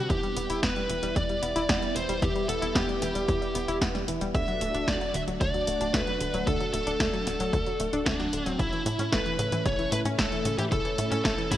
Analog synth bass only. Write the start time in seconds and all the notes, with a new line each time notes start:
0.10 E2
0.36 E1
0.50 E1
0.63 E2
0.90 E1
1.03 E1
1.16 E2
1.42 E1
1.56 E1
1.69 E2
1.96 E1
2.09 E1
2.22 E2
2.49 E1
2.62 E1
2.75 E2
3.02 E1
3.15 E1
3.28 E2
3.55 E1
3.68 E1
3.82 E2
4.08 E1
4.21 E1
4.35 D2
4.61 D1
4.74 D1
4.88 D2
5.14 D1
5.28 D1
5.41 D2
5.67 D1
5.81 D1
5.94 D2
6.20 D1
6.34 D1
6.47 D2
6.74 D1
6.87 D1
7.00 D2
7.26 D1
7.40 D1
7.53 D2
7.80 D1
7.93 D1
8.06 D2
8.33 D1
8.46 D1
8.59 A1
8.86 A2
8.99 A2
9.13 A1
9.39 A2
9.52 A2
9.65 A1
9.92 A2
10.05 A2
10.19 A1
10.45 A2
10.59 A2
10.72 A1
10.99 A2
11.12 A2
11.25 A1
11.51 A2